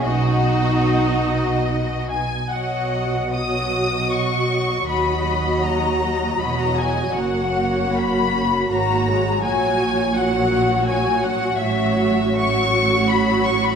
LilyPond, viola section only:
\new Staff \with { instrumentName = "Viola section" } { \time 3/4 \key b \major \tempo 4 = 79 << { dis'2~ dis'8 r8 | fis'4 fis'2 | fis'2 fis'4 | fis'2 fis'4 |
fis'4 fis'2 | \key fis \dorian fis'4 fis'2 | } \\ { r2. | fis4 fis2 | fis2 fis4 | ais2 ais8 gis8 |
fis4 fis2 | fis4 fis2 | } >> }